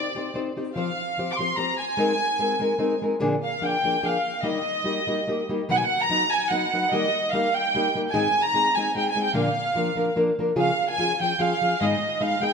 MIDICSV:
0, 0, Header, 1, 3, 480
1, 0, Start_track
1, 0, Key_signature, -3, "major"
1, 0, Tempo, 408998
1, 892, Time_signature, 3, 2, 24, 8
1, 14705, End_track
2, 0, Start_track
2, 0, Title_t, "Violin section"
2, 0, Program_c, 0, 48
2, 0, Note_on_c, 0, 74, 76
2, 382, Note_off_c, 0, 74, 0
2, 887, Note_on_c, 0, 77, 69
2, 1519, Note_off_c, 0, 77, 0
2, 1547, Note_on_c, 0, 86, 59
2, 1594, Note_on_c, 0, 84, 73
2, 1622, Note_off_c, 0, 86, 0
2, 1833, Note_on_c, 0, 82, 75
2, 1840, Note_off_c, 0, 84, 0
2, 2080, Note_on_c, 0, 80, 82
2, 2103, Note_off_c, 0, 82, 0
2, 3488, Note_off_c, 0, 80, 0
2, 4033, Note_on_c, 0, 77, 69
2, 4241, Note_off_c, 0, 77, 0
2, 4269, Note_on_c, 0, 79, 78
2, 4741, Note_off_c, 0, 79, 0
2, 4755, Note_on_c, 0, 77, 73
2, 5224, Note_off_c, 0, 77, 0
2, 5224, Note_on_c, 0, 75, 76
2, 6445, Note_off_c, 0, 75, 0
2, 6696, Note_on_c, 0, 78, 86
2, 6763, Note_off_c, 0, 78, 0
2, 6769, Note_on_c, 0, 80, 67
2, 6848, Note_off_c, 0, 80, 0
2, 6858, Note_on_c, 0, 78, 87
2, 7045, Note_off_c, 0, 78, 0
2, 7047, Note_on_c, 0, 82, 101
2, 7412, Note_off_c, 0, 82, 0
2, 7412, Note_on_c, 0, 80, 86
2, 7631, Note_on_c, 0, 78, 75
2, 7635, Note_off_c, 0, 80, 0
2, 8113, Note_off_c, 0, 78, 0
2, 8114, Note_on_c, 0, 75, 82
2, 8581, Note_on_c, 0, 77, 80
2, 8594, Note_off_c, 0, 75, 0
2, 8842, Note_off_c, 0, 77, 0
2, 8856, Note_on_c, 0, 79, 84
2, 9329, Note_off_c, 0, 79, 0
2, 9520, Note_on_c, 0, 80, 82
2, 9871, Note_off_c, 0, 80, 0
2, 9907, Note_on_c, 0, 82, 92
2, 10273, Note_off_c, 0, 82, 0
2, 10277, Note_on_c, 0, 80, 74
2, 10501, Note_off_c, 0, 80, 0
2, 10527, Note_on_c, 0, 79, 72
2, 10663, Note_off_c, 0, 79, 0
2, 10685, Note_on_c, 0, 80, 74
2, 10821, Note_off_c, 0, 80, 0
2, 10838, Note_on_c, 0, 79, 75
2, 10977, Note_off_c, 0, 79, 0
2, 10992, Note_on_c, 0, 77, 73
2, 11896, Note_off_c, 0, 77, 0
2, 12429, Note_on_c, 0, 77, 72
2, 12766, Note_off_c, 0, 77, 0
2, 12792, Note_on_c, 0, 80, 87
2, 13130, Note_off_c, 0, 80, 0
2, 13174, Note_on_c, 0, 79, 77
2, 13387, Note_on_c, 0, 77, 82
2, 13388, Note_off_c, 0, 79, 0
2, 13861, Note_off_c, 0, 77, 0
2, 13861, Note_on_c, 0, 75, 72
2, 14335, Note_off_c, 0, 75, 0
2, 14342, Note_on_c, 0, 77, 75
2, 14576, Note_on_c, 0, 79, 82
2, 14589, Note_off_c, 0, 77, 0
2, 14705, Note_off_c, 0, 79, 0
2, 14705, End_track
3, 0, Start_track
3, 0, Title_t, "Nylon-string guitar"
3, 0, Program_c, 1, 24
3, 177, Note_on_c, 1, 60, 46
3, 186, Note_on_c, 1, 67, 51
3, 192, Note_on_c, 1, 63, 44
3, 203, Note_on_c, 1, 72, 49
3, 315, Note_off_c, 1, 60, 0
3, 319, Note_off_c, 1, 67, 0
3, 322, Note_off_c, 1, 63, 0
3, 328, Note_off_c, 1, 72, 0
3, 400, Note_on_c, 1, 60, 41
3, 411, Note_on_c, 1, 63, 55
3, 417, Note_on_c, 1, 72, 63
3, 419, Note_on_c, 1, 67, 49
3, 558, Note_off_c, 1, 60, 0
3, 563, Note_off_c, 1, 63, 0
3, 567, Note_off_c, 1, 67, 0
3, 567, Note_off_c, 1, 72, 0
3, 665, Note_on_c, 1, 60, 41
3, 671, Note_on_c, 1, 63, 39
3, 673, Note_on_c, 1, 67, 44
3, 680, Note_on_c, 1, 72, 55
3, 801, Note_off_c, 1, 60, 0
3, 804, Note_off_c, 1, 63, 0
3, 805, Note_off_c, 1, 67, 0
3, 809, Note_off_c, 1, 72, 0
3, 890, Note_on_c, 1, 53, 56
3, 891, Note_on_c, 1, 60, 60
3, 897, Note_on_c, 1, 67, 62
3, 908, Note_on_c, 1, 72, 65
3, 1046, Note_off_c, 1, 53, 0
3, 1046, Note_off_c, 1, 60, 0
3, 1049, Note_off_c, 1, 67, 0
3, 1055, Note_off_c, 1, 72, 0
3, 1382, Note_on_c, 1, 53, 41
3, 1397, Note_on_c, 1, 60, 43
3, 1399, Note_on_c, 1, 67, 46
3, 1400, Note_on_c, 1, 72, 41
3, 1533, Note_off_c, 1, 53, 0
3, 1541, Note_off_c, 1, 60, 0
3, 1542, Note_off_c, 1, 67, 0
3, 1542, Note_off_c, 1, 72, 0
3, 1630, Note_on_c, 1, 53, 42
3, 1640, Note_on_c, 1, 60, 45
3, 1647, Note_on_c, 1, 67, 44
3, 1651, Note_on_c, 1, 72, 52
3, 1767, Note_off_c, 1, 53, 0
3, 1772, Note_off_c, 1, 60, 0
3, 1776, Note_off_c, 1, 67, 0
3, 1778, Note_off_c, 1, 72, 0
3, 1840, Note_on_c, 1, 53, 47
3, 1848, Note_on_c, 1, 67, 54
3, 1853, Note_on_c, 1, 60, 46
3, 1859, Note_on_c, 1, 72, 54
3, 2004, Note_off_c, 1, 53, 0
3, 2008, Note_off_c, 1, 67, 0
3, 2010, Note_off_c, 1, 60, 0
3, 2013, Note_off_c, 1, 72, 0
3, 2314, Note_on_c, 1, 56, 64
3, 2325, Note_on_c, 1, 60, 66
3, 2331, Note_on_c, 1, 70, 74
3, 2338, Note_on_c, 1, 63, 76
3, 2481, Note_off_c, 1, 56, 0
3, 2486, Note_off_c, 1, 60, 0
3, 2489, Note_off_c, 1, 70, 0
3, 2492, Note_off_c, 1, 63, 0
3, 2807, Note_on_c, 1, 56, 53
3, 2811, Note_on_c, 1, 63, 56
3, 2818, Note_on_c, 1, 60, 59
3, 2822, Note_on_c, 1, 70, 59
3, 2967, Note_off_c, 1, 56, 0
3, 2969, Note_off_c, 1, 63, 0
3, 2972, Note_off_c, 1, 60, 0
3, 2974, Note_off_c, 1, 70, 0
3, 3045, Note_on_c, 1, 56, 56
3, 3052, Note_on_c, 1, 60, 54
3, 3063, Note_on_c, 1, 63, 51
3, 3072, Note_on_c, 1, 70, 50
3, 3195, Note_off_c, 1, 56, 0
3, 3198, Note_off_c, 1, 60, 0
3, 3203, Note_off_c, 1, 63, 0
3, 3208, Note_off_c, 1, 70, 0
3, 3270, Note_on_c, 1, 56, 57
3, 3272, Note_on_c, 1, 60, 62
3, 3280, Note_on_c, 1, 63, 59
3, 3287, Note_on_c, 1, 70, 63
3, 3436, Note_off_c, 1, 56, 0
3, 3438, Note_off_c, 1, 60, 0
3, 3441, Note_off_c, 1, 63, 0
3, 3445, Note_off_c, 1, 70, 0
3, 3542, Note_on_c, 1, 56, 50
3, 3550, Note_on_c, 1, 60, 48
3, 3557, Note_on_c, 1, 63, 47
3, 3563, Note_on_c, 1, 70, 56
3, 3682, Note_off_c, 1, 56, 0
3, 3686, Note_off_c, 1, 60, 0
3, 3689, Note_off_c, 1, 63, 0
3, 3692, Note_off_c, 1, 70, 0
3, 3753, Note_on_c, 1, 46, 79
3, 3761, Note_on_c, 1, 50, 76
3, 3761, Note_on_c, 1, 68, 88
3, 3767, Note_on_c, 1, 58, 74
3, 3768, Note_on_c, 1, 53, 78
3, 3773, Note_on_c, 1, 62, 82
3, 3917, Note_off_c, 1, 46, 0
3, 3921, Note_off_c, 1, 50, 0
3, 3921, Note_off_c, 1, 68, 0
3, 3924, Note_off_c, 1, 58, 0
3, 3925, Note_off_c, 1, 53, 0
3, 3927, Note_off_c, 1, 62, 0
3, 4234, Note_on_c, 1, 53, 51
3, 4248, Note_on_c, 1, 58, 55
3, 4250, Note_on_c, 1, 62, 58
3, 4262, Note_on_c, 1, 68, 49
3, 4397, Note_off_c, 1, 53, 0
3, 4404, Note_off_c, 1, 58, 0
3, 4405, Note_off_c, 1, 62, 0
3, 4411, Note_off_c, 1, 68, 0
3, 4503, Note_on_c, 1, 53, 40
3, 4509, Note_on_c, 1, 58, 43
3, 4520, Note_on_c, 1, 62, 47
3, 4524, Note_on_c, 1, 68, 44
3, 4641, Note_off_c, 1, 53, 0
3, 4644, Note_off_c, 1, 58, 0
3, 4649, Note_off_c, 1, 62, 0
3, 4651, Note_off_c, 1, 68, 0
3, 4726, Note_on_c, 1, 53, 46
3, 4729, Note_on_c, 1, 58, 54
3, 4732, Note_on_c, 1, 62, 54
3, 4733, Note_on_c, 1, 68, 64
3, 4883, Note_off_c, 1, 53, 0
3, 4884, Note_off_c, 1, 58, 0
3, 4885, Note_off_c, 1, 62, 0
3, 4886, Note_off_c, 1, 68, 0
3, 5194, Note_on_c, 1, 51, 62
3, 5203, Note_on_c, 1, 55, 59
3, 5204, Note_on_c, 1, 58, 67
3, 5204, Note_on_c, 1, 63, 67
3, 5211, Note_on_c, 1, 67, 84
3, 5358, Note_off_c, 1, 51, 0
3, 5362, Note_off_c, 1, 55, 0
3, 5363, Note_off_c, 1, 58, 0
3, 5363, Note_off_c, 1, 63, 0
3, 5366, Note_off_c, 1, 67, 0
3, 5681, Note_on_c, 1, 55, 45
3, 5687, Note_on_c, 1, 58, 45
3, 5695, Note_on_c, 1, 63, 46
3, 5700, Note_on_c, 1, 67, 50
3, 5843, Note_off_c, 1, 55, 0
3, 5846, Note_off_c, 1, 58, 0
3, 5850, Note_off_c, 1, 63, 0
3, 5853, Note_off_c, 1, 67, 0
3, 5950, Note_on_c, 1, 58, 47
3, 5951, Note_on_c, 1, 55, 41
3, 5961, Note_on_c, 1, 63, 52
3, 5973, Note_on_c, 1, 67, 45
3, 6088, Note_off_c, 1, 58, 0
3, 6089, Note_off_c, 1, 55, 0
3, 6094, Note_off_c, 1, 63, 0
3, 6100, Note_off_c, 1, 67, 0
3, 6190, Note_on_c, 1, 55, 49
3, 6192, Note_on_c, 1, 58, 55
3, 6202, Note_on_c, 1, 63, 46
3, 6209, Note_on_c, 1, 67, 57
3, 6341, Note_off_c, 1, 55, 0
3, 6342, Note_off_c, 1, 58, 0
3, 6347, Note_off_c, 1, 63, 0
3, 6350, Note_off_c, 1, 67, 0
3, 6448, Note_on_c, 1, 55, 42
3, 6448, Note_on_c, 1, 58, 48
3, 6457, Note_on_c, 1, 63, 44
3, 6463, Note_on_c, 1, 67, 45
3, 6580, Note_off_c, 1, 55, 0
3, 6580, Note_off_c, 1, 58, 0
3, 6585, Note_off_c, 1, 63, 0
3, 6588, Note_off_c, 1, 67, 0
3, 6676, Note_on_c, 1, 51, 81
3, 6679, Note_on_c, 1, 54, 75
3, 6681, Note_on_c, 1, 47, 73
3, 6685, Note_on_c, 1, 59, 70
3, 6688, Note_on_c, 1, 71, 71
3, 6689, Note_on_c, 1, 63, 76
3, 6825, Note_off_c, 1, 51, 0
3, 6827, Note_off_c, 1, 54, 0
3, 6828, Note_off_c, 1, 47, 0
3, 6830, Note_off_c, 1, 59, 0
3, 6831, Note_off_c, 1, 71, 0
3, 6832, Note_off_c, 1, 63, 0
3, 7154, Note_on_c, 1, 59, 52
3, 7155, Note_on_c, 1, 54, 58
3, 7168, Note_on_c, 1, 63, 58
3, 7173, Note_on_c, 1, 71, 53
3, 7306, Note_off_c, 1, 54, 0
3, 7306, Note_off_c, 1, 59, 0
3, 7313, Note_off_c, 1, 63, 0
3, 7315, Note_off_c, 1, 71, 0
3, 7636, Note_on_c, 1, 54, 52
3, 7643, Note_on_c, 1, 59, 51
3, 7648, Note_on_c, 1, 63, 64
3, 7658, Note_on_c, 1, 71, 61
3, 7787, Note_off_c, 1, 54, 0
3, 7790, Note_off_c, 1, 59, 0
3, 7793, Note_off_c, 1, 63, 0
3, 7798, Note_off_c, 1, 71, 0
3, 7898, Note_on_c, 1, 59, 45
3, 7902, Note_on_c, 1, 54, 43
3, 7908, Note_on_c, 1, 63, 45
3, 7913, Note_on_c, 1, 71, 45
3, 8028, Note_off_c, 1, 59, 0
3, 8030, Note_off_c, 1, 54, 0
3, 8033, Note_off_c, 1, 63, 0
3, 8036, Note_off_c, 1, 71, 0
3, 8117, Note_on_c, 1, 51, 68
3, 8124, Note_on_c, 1, 55, 78
3, 8129, Note_on_c, 1, 63, 65
3, 8130, Note_on_c, 1, 58, 69
3, 8136, Note_on_c, 1, 67, 75
3, 8268, Note_off_c, 1, 51, 0
3, 8272, Note_off_c, 1, 55, 0
3, 8274, Note_off_c, 1, 63, 0
3, 8275, Note_off_c, 1, 58, 0
3, 8278, Note_off_c, 1, 67, 0
3, 8602, Note_on_c, 1, 55, 48
3, 8611, Note_on_c, 1, 58, 60
3, 8618, Note_on_c, 1, 63, 49
3, 8626, Note_on_c, 1, 67, 57
3, 8750, Note_off_c, 1, 55, 0
3, 8755, Note_off_c, 1, 58, 0
3, 8758, Note_off_c, 1, 63, 0
3, 8762, Note_off_c, 1, 67, 0
3, 9091, Note_on_c, 1, 55, 50
3, 9093, Note_on_c, 1, 58, 59
3, 9109, Note_on_c, 1, 63, 58
3, 9109, Note_on_c, 1, 67, 58
3, 9233, Note_off_c, 1, 55, 0
3, 9234, Note_off_c, 1, 58, 0
3, 9242, Note_off_c, 1, 63, 0
3, 9242, Note_off_c, 1, 67, 0
3, 9334, Note_on_c, 1, 55, 45
3, 9335, Note_on_c, 1, 58, 44
3, 9342, Note_on_c, 1, 63, 47
3, 9344, Note_on_c, 1, 67, 56
3, 9463, Note_off_c, 1, 55, 0
3, 9463, Note_off_c, 1, 58, 0
3, 9467, Note_off_c, 1, 63, 0
3, 9468, Note_off_c, 1, 67, 0
3, 9545, Note_on_c, 1, 44, 62
3, 9549, Note_on_c, 1, 56, 68
3, 9552, Note_on_c, 1, 63, 89
3, 9553, Note_on_c, 1, 68, 73
3, 9555, Note_on_c, 1, 51, 83
3, 9559, Note_on_c, 1, 60, 75
3, 9698, Note_off_c, 1, 44, 0
3, 9700, Note_off_c, 1, 56, 0
3, 9701, Note_off_c, 1, 63, 0
3, 9702, Note_off_c, 1, 51, 0
3, 9702, Note_off_c, 1, 68, 0
3, 9705, Note_off_c, 1, 60, 0
3, 10016, Note_on_c, 1, 56, 58
3, 10019, Note_on_c, 1, 60, 56
3, 10028, Note_on_c, 1, 63, 51
3, 10038, Note_on_c, 1, 68, 62
3, 10171, Note_off_c, 1, 56, 0
3, 10172, Note_off_c, 1, 60, 0
3, 10177, Note_off_c, 1, 63, 0
3, 10182, Note_off_c, 1, 68, 0
3, 10289, Note_on_c, 1, 56, 52
3, 10295, Note_on_c, 1, 60, 49
3, 10302, Note_on_c, 1, 68, 54
3, 10307, Note_on_c, 1, 63, 53
3, 10417, Note_off_c, 1, 56, 0
3, 10420, Note_off_c, 1, 60, 0
3, 10423, Note_off_c, 1, 68, 0
3, 10426, Note_off_c, 1, 63, 0
3, 10505, Note_on_c, 1, 56, 55
3, 10514, Note_on_c, 1, 60, 52
3, 10523, Note_on_c, 1, 63, 50
3, 10527, Note_on_c, 1, 68, 57
3, 10655, Note_off_c, 1, 56, 0
3, 10659, Note_off_c, 1, 60, 0
3, 10664, Note_off_c, 1, 63, 0
3, 10666, Note_off_c, 1, 68, 0
3, 10744, Note_on_c, 1, 56, 49
3, 10748, Note_on_c, 1, 60, 50
3, 10753, Note_on_c, 1, 63, 49
3, 10762, Note_on_c, 1, 68, 44
3, 10883, Note_off_c, 1, 56, 0
3, 10885, Note_off_c, 1, 60, 0
3, 10887, Note_off_c, 1, 63, 0
3, 10892, Note_off_c, 1, 68, 0
3, 10959, Note_on_c, 1, 50, 67
3, 10959, Note_on_c, 1, 53, 72
3, 10963, Note_on_c, 1, 46, 78
3, 10969, Note_on_c, 1, 58, 83
3, 10973, Note_on_c, 1, 62, 71
3, 10975, Note_on_c, 1, 70, 65
3, 11120, Note_off_c, 1, 50, 0
3, 11120, Note_off_c, 1, 53, 0
3, 11122, Note_off_c, 1, 46, 0
3, 11125, Note_off_c, 1, 58, 0
3, 11127, Note_off_c, 1, 62, 0
3, 11128, Note_off_c, 1, 70, 0
3, 11446, Note_on_c, 1, 53, 55
3, 11451, Note_on_c, 1, 58, 50
3, 11457, Note_on_c, 1, 62, 53
3, 11460, Note_on_c, 1, 70, 54
3, 11603, Note_off_c, 1, 53, 0
3, 11606, Note_off_c, 1, 58, 0
3, 11609, Note_off_c, 1, 62, 0
3, 11610, Note_off_c, 1, 70, 0
3, 11682, Note_on_c, 1, 53, 51
3, 11697, Note_on_c, 1, 58, 53
3, 11697, Note_on_c, 1, 62, 51
3, 11701, Note_on_c, 1, 70, 54
3, 11832, Note_off_c, 1, 53, 0
3, 11839, Note_off_c, 1, 58, 0
3, 11839, Note_off_c, 1, 62, 0
3, 11841, Note_off_c, 1, 70, 0
3, 11922, Note_on_c, 1, 58, 58
3, 11927, Note_on_c, 1, 53, 47
3, 11933, Note_on_c, 1, 62, 66
3, 11935, Note_on_c, 1, 70, 61
3, 12083, Note_off_c, 1, 58, 0
3, 12085, Note_off_c, 1, 53, 0
3, 12088, Note_off_c, 1, 62, 0
3, 12089, Note_off_c, 1, 70, 0
3, 12190, Note_on_c, 1, 53, 42
3, 12191, Note_on_c, 1, 62, 54
3, 12192, Note_on_c, 1, 58, 46
3, 12208, Note_on_c, 1, 70, 52
3, 12327, Note_off_c, 1, 53, 0
3, 12327, Note_off_c, 1, 62, 0
3, 12328, Note_off_c, 1, 58, 0
3, 12336, Note_off_c, 1, 70, 0
3, 12392, Note_on_c, 1, 61, 61
3, 12393, Note_on_c, 1, 49, 61
3, 12395, Note_on_c, 1, 53, 65
3, 12396, Note_on_c, 1, 65, 73
3, 12400, Note_on_c, 1, 68, 74
3, 12558, Note_off_c, 1, 61, 0
3, 12559, Note_off_c, 1, 49, 0
3, 12560, Note_off_c, 1, 53, 0
3, 12560, Note_off_c, 1, 65, 0
3, 12562, Note_off_c, 1, 68, 0
3, 12888, Note_on_c, 1, 53, 45
3, 12900, Note_on_c, 1, 65, 61
3, 12904, Note_on_c, 1, 61, 57
3, 12915, Note_on_c, 1, 68, 58
3, 13045, Note_off_c, 1, 53, 0
3, 13051, Note_off_c, 1, 65, 0
3, 13053, Note_off_c, 1, 61, 0
3, 13059, Note_off_c, 1, 68, 0
3, 13147, Note_on_c, 1, 53, 43
3, 13153, Note_on_c, 1, 61, 44
3, 13161, Note_on_c, 1, 65, 42
3, 13170, Note_on_c, 1, 68, 46
3, 13284, Note_off_c, 1, 53, 0
3, 13287, Note_off_c, 1, 61, 0
3, 13291, Note_off_c, 1, 65, 0
3, 13295, Note_off_c, 1, 68, 0
3, 13366, Note_on_c, 1, 53, 59
3, 13371, Note_on_c, 1, 61, 50
3, 13380, Note_on_c, 1, 65, 58
3, 13381, Note_on_c, 1, 68, 61
3, 13524, Note_off_c, 1, 53, 0
3, 13527, Note_off_c, 1, 61, 0
3, 13531, Note_off_c, 1, 65, 0
3, 13532, Note_off_c, 1, 68, 0
3, 13630, Note_on_c, 1, 53, 42
3, 13640, Note_on_c, 1, 61, 44
3, 13643, Note_on_c, 1, 65, 42
3, 13647, Note_on_c, 1, 68, 49
3, 13765, Note_off_c, 1, 53, 0
3, 13770, Note_off_c, 1, 61, 0
3, 13772, Note_off_c, 1, 65, 0
3, 13774, Note_off_c, 1, 68, 0
3, 13859, Note_on_c, 1, 51, 68
3, 13861, Note_on_c, 1, 44, 71
3, 13861, Note_on_c, 1, 56, 70
3, 13866, Note_on_c, 1, 68, 74
3, 13872, Note_on_c, 1, 63, 77
3, 13873, Note_on_c, 1, 59, 74
3, 14010, Note_off_c, 1, 51, 0
3, 14011, Note_off_c, 1, 44, 0
3, 14011, Note_off_c, 1, 56, 0
3, 14013, Note_off_c, 1, 68, 0
3, 14016, Note_off_c, 1, 63, 0
3, 14017, Note_off_c, 1, 59, 0
3, 14325, Note_on_c, 1, 56, 53
3, 14326, Note_on_c, 1, 59, 50
3, 14332, Note_on_c, 1, 63, 59
3, 14335, Note_on_c, 1, 68, 59
3, 14480, Note_off_c, 1, 56, 0
3, 14480, Note_off_c, 1, 59, 0
3, 14483, Note_off_c, 1, 63, 0
3, 14485, Note_off_c, 1, 68, 0
3, 14558, Note_on_c, 1, 56, 49
3, 14578, Note_on_c, 1, 59, 50
3, 14584, Note_on_c, 1, 68, 47
3, 14586, Note_on_c, 1, 63, 46
3, 14704, Note_off_c, 1, 56, 0
3, 14705, Note_off_c, 1, 59, 0
3, 14705, Note_off_c, 1, 63, 0
3, 14705, Note_off_c, 1, 68, 0
3, 14705, End_track
0, 0, End_of_file